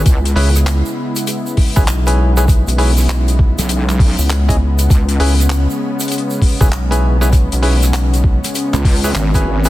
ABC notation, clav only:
X:1
M:4/4
L:1/16
Q:"Swing 16ths" 1/4=99
K:C#m
V:1 name="Clav"
z2 [CEGB] z8 [CEGB] z [CEGB]2 [CEGB] | z2 [CEGB] z8 z2 [CEGd] z2 | z2 [CEGB] z8 [CEGB] z [CEGB]2 [CEGB] | z2 [CEGB] z8 [CEGB] z [CEGB]2 [CEGB] |]